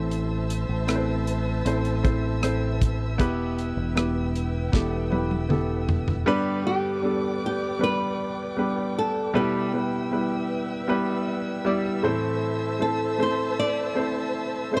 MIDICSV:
0, 0, Header, 1, 6, 480
1, 0, Start_track
1, 0, Key_signature, 1, "minor"
1, 0, Tempo, 769231
1, 73, Time_signature, 4, 2, 24, 8
1, 9235, End_track
2, 0, Start_track
2, 0, Title_t, "String section"
2, 0, Program_c, 0, 48
2, 0, Note_on_c, 0, 72, 77
2, 0, Note_on_c, 0, 76, 59
2, 0, Note_on_c, 0, 81, 68
2, 0, Note_on_c, 0, 88, 70
2, 1971, Note_off_c, 0, 81, 0
2, 1972, Note_off_c, 0, 72, 0
2, 1996, Note_on_c, 0, 71, 65
2, 1997, Note_on_c, 0, 79, 58
2, 3888, Note_off_c, 0, 76, 0
2, 3888, Note_off_c, 0, 88, 0
2, 3895, Note_off_c, 0, 71, 0
2, 3896, Note_off_c, 0, 79, 0
2, 3914, Note_on_c, 0, 79, 69
2, 3914, Note_on_c, 0, 86, 74
2, 3917, Note_on_c, 0, 71, 63
2, 3917, Note_on_c, 0, 74, 65
2, 5814, Note_off_c, 0, 86, 0
2, 5816, Note_off_c, 0, 71, 0
2, 5816, Note_off_c, 0, 74, 0
2, 5833, Note_on_c, 0, 76, 67
2, 5833, Note_on_c, 0, 88, 83
2, 5834, Note_on_c, 0, 71, 72
2, 7488, Note_off_c, 0, 79, 0
2, 7497, Note_off_c, 0, 71, 0
2, 7513, Note_on_c, 0, 81, 80
2, 7515, Note_on_c, 0, 72, 89
2, 9235, Note_off_c, 0, 72, 0
2, 9235, Note_off_c, 0, 76, 0
2, 9235, Note_off_c, 0, 81, 0
2, 9235, Note_off_c, 0, 88, 0
2, 9235, End_track
3, 0, Start_track
3, 0, Title_t, "Nylon-string guitar"
3, 0, Program_c, 1, 24
3, 4160, Note_on_c, 1, 67, 87
3, 4611, Note_off_c, 1, 67, 0
3, 4655, Note_on_c, 1, 67, 89
3, 4887, Note_off_c, 1, 67, 0
3, 4889, Note_on_c, 1, 71, 112
3, 5604, Note_off_c, 1, 71, 0
3, 5607, Note_on_c, 1, 69, 93
3, 5841, Note_off_c, 1, 69, 0
3, 5844, Note_on_c, 1, 67, 85
3, 6293, Note_off_c, 1, 67, 0
3, 8000, Note_on_c, 1, 69, 92
3, 8243, Note_off_c, 1, 69, 0
3, 8253, Note_on_c, 1, 72, 100
3, 8481, Note_off_c, 1, 72, 0
3, 8483, Note_on_c, 1, 74, 115
3, 9212, Note_off_c, 1, 74, 0
3, 9214, Note_on_c, 1, 72, 103
3, 9235, Note_off_c, 1, 72, 0
3, 9235, End_track
4, 0, Start_track
4, 0, Title_t, "Grand piano"
4, 0, Program_c, 2, 0
4, 0, Control_c, 2, 64, 127
4, 0, Note_on_c, 2, 45, 58
4, 0, Note_on_c, 2, 52, 54
4, 0, Note_on_c, 2, 60, 74
4, 0, Note_on_c, 2, 64, 65
4, 0, Note_on_c, 2, 69, 65
4, 0, Note_on_c, 2, 72, 80
4, 515, Note_off_c, 2, 60, 0
4, 517, Note_off_c, 2, 64, 0
4, 519, Note_off_c, 2, 69, 0
4, 520, Note_off_c, 2, 72, 0
4, 529, Note_off_c, 2, 45, 0
4, 529, Note_off_c, 2, 52, 0
4, 543, Note_on_c, 2, 60, 81
4, 548, Note_on_c, 2, 64, 70
4, 551, Note_on_c, 2, 69, 72
4, 558, Note_on_c, 2, 71, 68
4, 596, Note_off_c, 2, 71, 0
4, 597, Note_on_c, 2, 72, 83
4, 1004, Note_off_c, 2, 60, 0
4, 1006, Note_off_c, 2, 64, 0
4, 1008, Note_off_c, 2, 69, 0
4, 1030, Note_on_c, 2, 60, 74
4, 1031, Note_off_c, 2, 72, 0
4, 1032, Note_on_c, 2, 64, 74
4, 1038, Note_on_c, 2, 69, 73
4, 1043, Note_on_c, 2, 72, 86
4, 1255, Note_off_c, 2, 60, 0
4, 1259, Note_off_c, 2, 64, 0
4, 1262, Note_off_c, 2, 69, 0
4, 1264, Note_on_c, 2, 60, 71
4, 1266, Note_off_c, 2, 72, 0
4, 1269, Note_on_c, 2, 64, 70
4, 1272, Note_on_c, 2, 69, 69
4, 1276, Note_on_c, 2, 72, 84
4, 1497, Note_off_c, 2, 60, 0
4, 1499, Note_off_c, 2, 64, 0
4, 1500, Note_off_c, 2, 69, 0
4, 1503, Note_off_c, 2, 72, 0
4, 1510, Note_on_c, 2, 60, 78
4, 1512, Note_on_c, 2, 64, 71
4, 1516, Note_on_c, 2, 69, 70
4, 1520, Note_on_c, 2, 72, 85
4, 1967, Note_off_c, 2, 60, 0
4, 1968, Note_off_c, 2, 64, 0
4, 1970, Note_off_c, 2, 69, 0
4, 1972, Note_off_c, 2, 72, 0
4, 1986, Note_on_c, 2, 59, 112
4, 1989, Note_on_c, 2, 64, 95
4, 1994, Note_on_c, 2, 47, 70
4, 1995, Note_on_c, 2, 67, 101
4, 1999, Note_on_c, 2, 71, 113
4, 2000, Control_c, 2, 64, 0
4, 2118, Control_c, 2, 64, 127
4, 2445, Note_off_c, 2, 59, 0
4, 2447, Note_off_c, 2, 64, 0
4, 2450, Note_off_c, 2, 67, 0
4, 2452, Note_off_c, 2, 71, 0
4, 2466, Note_on_c, 2, 59, 78
4, 2470, Note_on_c, 2, 64, 71
4, 2473, Note_on_c, 2, 67, 69
4, 2476, Note_on_c, 2, 71, 80
4, 2688, Note_off_c, 2, 47, 0
4, 2925, Note_off_c, 2, 59, 0
4, 2927, Note_off_c, 2, 64, 0
4, 2929, Note_off_c, 2, 67, 0
4, 2930, Note_off_c, 2, 71, 0
4, 2946, Note_on_c, 2, 59, 80
4, 2953, Note_on_c, 2, 64, 70
4, 2954, Note_on_c, 2, 67, 74
4, 2958, Note_on_c, 2, 69, 87
4, 3175, Note_off_c, 2, 59, 0
4, 3178, Note_off_c, 2, 64, 0
4, 3182, Note_off_c, 2, 67, 0
4, 3183, Note_off_c, 2, 69, 0
4, 3184, Note_on_c, 2, 59, 71
4, 3188, Note_on_c, 2, 64, 62
4, 3193, Note_on_c, 2, 67, 65
4, 3196, Note_on_c, 2, 71, 78
4, 3416, Note_off_c, 2, 59, 0
4, 3418, Note_off_c, 2, 64, 0
4, 3421, Note_off_c, 2, 67, 0
4, 3423, Note_off_c, 2, 71, 0
4, 3425, Note_on_c, 2, 59, 76
4, 3430, Note_on_c, 2, 64, 63
4, 3436, Note_on_c, 2, 67, 69
4, 3438, Note_on_c, 2, 69, 87
4, 3885, Note_off_c, 2, 59, 0
4, 3887, Note_off_c, 2, 64, 0
4, 3891, Note_off_c, 2, 67, 0
4, 3891, Note_off_c, 2, 69, 0
4, 3906, Note_on_c, 2, 55, 112
4, 3908, Note_on_c, 2, 59, 105
4, 3910, Note_on_c, 2, 43, 74
4, 3911, Note_on_c, 2, 50, 77
4, 3911, Note_on_c, 2, 62, 108
4, 3915, Note_on_c, 2, 67, 107
4, 3916, Note_on_c, 2, 71, 127
4, 3922, Control_c, 2, 64, 0
4, 4025, Control_c, 2, 64, 127
4, 4133, Note_off_c, 2, 55, 0
4, 4136, Note_off_c, 2, 59, 0
4, 4139, Note_off_c, 2, 62, 0
4, 4142, Note_off_c, 2, 67, 0
4, 4142, Note_off_c, 2, 71, 0
4, 4143, Note_on_c, 2, 55, 67
4, 4145, Note_on_c, 2, 59, 63
4, 4149, Note_on_c, 2, 62, 60
4, 4151, Note_on_c, 2, 67, 57
4, 4153, Note_on_c, 2, 69, 69
4, 4371, Note_off_c, 2, 55, 0
4, 4377, Note_off_c, 2, 59, 0
4, 4378, Note_off_c, 2, 62, 0
4, 4380, Note_off_c, 2, 67, 0
4, 4380, Note_on_c, 2, 55, 70
4, 4381, Note_off_c, 2, 69, 0
4, 4387, Note_on_c, 2, 59, 64
4, 4387, Note_on_c, 2, 62, 71
4, 4390, Note_on_c, 2, 67, 59
4, 4395, Note_on_c, 2, 69, 84
4, 4607, Note_off_c, 2, 43, 0
4, 4607, Note_off_c, 2, 50, 0
4, 4843, Note_off_c, 2, 55, 0
4, 4846, Note_off_c, 2, 59, 0
4, 4846, Note_off_c, 2, 62, 0
4, 4847, Note_off_c, 2, 67, 0
4, 4850, Note_off_c, 2, 69, 0
4, 4862, Note_on_c, 2, 55, 71
4, 4862, Note_on_c, 2, 59, 65
4, 4866, Note_on_c, 2, 62, 68
4, 4871, Note_on_c, 2, 67, 65
4, 4872, Note_on_c, 2, 71, 84
4, 5323, Note_off_c, 2, 55, 0
4, 5323, Note_off_c, 2, 59, 0
4, 5325, Note_off_c, 2, 62, 0
4, 5328, Note_off_c, 2, 67, 0
4, 5328, Note_off_c, 2, 71, 0
4, 5345, Note_on_c, 2, 55, 74
4, 5347, Note_on_c, 2, 59, 69
4, 5351, Note_on_c, 2, 62, 68
4, 5355, Note_on_c, 2, 67, 65
4, 5359, Note_on_c, 2, 71, 86
4, 5805, Note_off_c, 2, 55, 0
4, 5806, Note_off_c, 2, 59, 0
4, 5808, Note_off_c, 2, 62, 0
4, 5810, Note_off_c, 2, 67, 0
4, 5812, Note_off_c, 2, 71, 0
4, 5826, Note_on_c, 2, 55, 102
4, 5827, Note_on_c, 2, 59, 97
4, 5829, Note_on_c, 2, 64, 96
4, 5832, Note_on_c, 2, 47, 70
4, 5834, Note_on_c, 2, 67, 93
4, 5836, Note_on_c, 2, 71, 114
4, 5841, Control_c, 2, 64, 0
4, 5952, Control_c, 2, 64, 127
4, 6057, Note_off_c, 2, 55, 0
4, 6058, Note_off_c, 2, 59, 0
4, 6059, Note_off_c, 2, 64, 0
4, 6061, Note_off_c, 2, 67, 0
4, 6062, Note_off_c, 2, 71, 0
4, 6070, Note_on_c, 2, 55, 64
4, 6072, Note_on_c, 2, 59, 57
4, 6076, Note_on_c, 2, 64, 59
4, 6078, Note_on_c, 2, 67, 61
4, 6084, Note_on_c, 2, 71, 74
4, 6299, Note_off_c, 2, 55, 0
4, 6301, Note_off_c, 2, 59, 0
4, 6302, Note_off_c, 2, 64, 0
4, 6304, Note_off_c, 2, 67, 0
4, 6306, Note_off_c, 2, 71, 0
4, 6308, Note_on_c, 2, 55, 71
4, 6312, Note_on_c, 2, 59, 63
4, 6315, Note_on_c, 2, 64, 70
4, 6316, Note_on_c, 2, 67, 66
4, 6320, Note_on_c, 2, 71, 78
4, 6527, Note_off_c, 2, 47, 0
4, 6767, Note_off_c, 2, 55, 0
4, 6768, Note_off_c, 2, 59, 0
4, 6770, Note_off_c, 2, 64, 0
4, 6770, Note_off_c, 2, 67, 0
4, 6773, Note_off_c, 2, 71, 0
4, 6787, Note_on_c, 2, 55, 89
4, 6790, Note_on_c, 2, 59, 86
4, 6793, Note_on_c, 2, 64, 78
4, 6793, Note_on_c, 2, 67, 87
4, 6798, Note_on_c, 2, 71, 104
4, 7246, Note_off_c, 2, 55, 0
4, 7247, Note_off_c, 2, 59, 0
4, 7249, Note_off_c, 2, 64, 0
4, 7249, Note_off_c, 2, 67, 0
4, 7252, Note_off_c, 2, 71, 0
4, 7268, Note_on_c, 2, 55, 93
4, 7270, Note_on_c, 2, 59, 82
4, 7274, Note_on_c, 2, 64, 88
4, 7277, Note_on_c, 2, 67, 88
4, 7278, Note_on_c, 2, 74, 102
4, 7501, Note_off_c, 2, 64, 0
4, 7504, Note_on_c, 2, 57, 94
4, 7506, Note_on_c, 2, 60, 83
4, 7509, Note_on_c, 2, 52, 83
4, 7510, Note_off_c, 2, 55, 0
4, 7510, Note_on_c, 2, 45, 86
4, 7511, Note_off_c, 2, 59, 0
4, 7511, Note_on_c, 2, 64, 89
4, 7512, Note_on_c, 2, 69, 92
4, 7515, Note_off_c, 2, 67, 0
4, 7516, Note_off_c, 2, 74, 0
4, 7517, Note_on_c, 2, 72, 102
4, 7521, Control_c, 2, 64, 0
4, 7617, Control_c, 2, 64, 127
4, 7964, Note_off_c, 2, 57, 0
4, 7965, Note_off_c, 2, 60, 0
4, 7968, Note_off_c, 2, 64, 0
4, 7968, Note_off_c, 2, 69, 0
4, 7971, Note_off_c, 2, 72, 0
4, 7981, Note_on_c, 2, 57, 71
4, 7983, Note_on_c, 2, 60, 58
4, 7987, Note_on_c, 2, 64, 58
4, 7990, Note_on_c, 2, 69, 64
4, 7991, Note_on_c, 2, 72, 77
4, 8206, Note_off_c, 2, 45, 0
4, 8206, Note_off_c, 2, 52, 0
4, 8215, Note_off_c, 2, 57, 0
4, 8216, Note_off_c, 2, 60, 0
4, 8218, Note_off_c, 2, 64, 0
4, 8219, Note_off_c, 2, 69, 0
4, 8220, Note_off_c, 2, 72, 0
4, 8226, Note_on_c, 2, 57, 79
4, 8229, Note_on_c, 2, 60, 67
4, 8230, Note_on_c, 2, 64, 73
4, 8232, Note_on_c, 2, 69, 70
4, 8235, Note_on_c, 2, 72, 85
4, 8686, Note_off_c, 2, 57, 0
4, 8687, Note_off_c, 2, 60, 0
4, 8687, Note_off_c, 2, 64, 0
4, 8688, Note_off_c, 2, 69, 0
4, 8690, Note_off_c, 2, 72, 0
4, 8703, Note_on_c, 2, 57, 79
4, 8707, Note_on_c, 2, 60, 70
4, 8708, Note_on_c, 2, 64, 72
4, 8712, Note_on_c, 2, 69, 72
4, 8714, Note_on_c, 2, 72, 81
4, 9164, Note_off_c, 2, 57, 0
4, 9166, Note_off_c, 2, 60, 0
4, 9166, Note_off_c, 2, 64, 0
4, 9168, Note_off_c, 2, 69, 0
4, 9170, Note_off_c, 2, 72, 0
4, 9181, Note_on_c, 2, 57, 76
4, 9186, Note_on_c, 2, 60, 69
4, 9188, Note_on_c, 2, 64, 72
4, 9190, Note_on_c, 2, 69, 66
4, 9196, Note_on_c, 2, 72, 86
4, 9235, Note_off_c, 2, 57, 0
4, 9235, Note_off_c, 2, 60, 0
4, 9235, Note_off_c, 2, 64, 0
4, 9235, Note_off_c, 2, 69, 0
4, 9235, Note_off_c, 2, 72, 0
4, 9235, End_track
5, 0, Start_track
5, 0, Title_t, "Fingered electric bass"
5, 0, Program_c, 3, 33
5, 0, Note_on_c, 3, 33, 90
5, 406, Note_off_c, 3, 33, 0
5, 431, Note_on_c, 3, 33, 85
5, 1007, Note_off_c, 3, 33, 0
5, 1033, Note_on_c, 3, 33, 90
5, 1992, Note_off_c, 3, 33, 0
5, 1992, Note_on_c, 3, 28, 88
5, 2328, Note_off_c, 3, 28, 0
5, 2351, Note_on_c, 3, 28, 81
5, 2927, Note_off_c, 3, 28, 0
5, 2952, Note_on_c, 3, 28, 84
5, 3887, Note_off_c, 3, 28, 0
5, 9235, End_track
6, 0, Start_track
6, 0, Title_t, "Drums"
6, 71, Note_on_c, 9, 42, 78
6, 133, Note_off_c, 9, 42, 0
6, 312, Note_on_c, 9, 42, 70
6, 375, Note_off_c, 9, 42, 0
6, 550, Note_on_c, 9, 42, 70
6, 554, Note_on_c, 9, 37, 92
6, 613, Note_off_c, 9, 42, 0
6, 617, Note_off_c, 9, 37, 0
6, 794, Note_on_c, 9, 42, 67
6, 856, Note_off_c, 9, 42, 0
6, 1035, Note_on_c, 9, 42, 78
6, 1097, Note_off_c, 9, 42, 0
6, 1153, Note_on_c, 9, 42, 51
6, 1215, Note_off_c, 9, 42, 0
6, 1277, Note_on_c, 9, 36, 94
6, 1277, Note_on_c, 9, 42, 52
6, 1339, Note_off_c, 9, 36, 0
6, 1339, Note_off_c, 9, 42, 0
6, 1515, Note_on_c, 9, 42, 88
6, 1516, Note_on_c, 9, 37, 87
6, 1577, Note_off_c, 9, 42, 0
6, 1578, Note_off_c, 9, 37, 0
6, 1756, Note_on_c, 9, 36, 75
6, 1757, Note_on_c, 9, 42, 65
6, 1819, Note_off_c, 9, 36, 0
6, 1819, Note_off_c, 9, 42, 0
6, 1994, Note_on_c, 9, 36, 106
6, 1995, Note_on_c, 9, 42, 85
6, 2056, Note_off_c, 9, 36, 0
6, 2057, Note_off_c, 9, 42, 0
6, 2237, Note_on_c, 9, 42, 72
6, 2299, Note_off_c, 9, 42, 0
6, 2476, Note_on_c, 9, 42, 68
6, 2480, Note_on_c, 9, 37, 102
6, 2539, Note_off_c, 9, 42, 0
6, 2542, Note_off_c, 9, 37, 0
6, 2717, Note_on_c, 9, 42, 70
6, 2780, Note_off_c, 9, 42, 0
6, 2953, Note_on_c, 9, 36, 92
6, 2956, Note_on_c, 9, 38, 56
6, 3015, Note_off_c, 9, 36, 0
6, 3018, Note_off_c, 9, 38, 0
6, 3194, Note_on_c, 9, 48, 59
6, 3256, Note_off_c, 9, 48, 0
6, 3314, Note_on_c, 9, 48, 53
6, 3377, Note_off_c, 9, 48, 0
6, 3432, Note_on_c, 9, 47, 76
6, 3495, Note_off_c, 9, 47, 0
6, 3673, Note_on_c, 9, 43, 95
6, 3736, Note_off_c, 9, 43, 0
6, 3792, Note_on_c, 9, 43, 89
6, 3855, Note_off_c, 9, 43, 0
6, 9235, End_track
0, 0, End_of_file